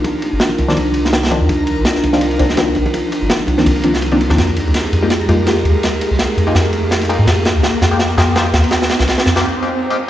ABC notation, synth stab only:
X:1
M:4/4
L:1/16
Q:"Swing 16ths" 1/4=166
K:Fdor
V:1 name="Synth stab"
z6 z [E,F,B,CD] z6 [E,F,B,CD] z | z6 z [E,F,B,CD] z2 [E,F,B,CD] z [E,F,B,CD] z3 | z6 z [E,F,B,CD] z2 [E,F,B,CD] z2 [E,F,B,CD] z [E,F,B,CD] | z6 z [A,B,EFG] z2 [A,B,EFG] z [A,B,EFG] z3 |
z6 z [A,B,EFG] z6 [A,B,EFG] z | z6 z [A,B,EFG] z2 [A,B,EFG] z [A,B,EFG] z3 | z6 z [A,B,EFG] z2 [A,B,EFG] z2 [A,B,EFG] z2 |]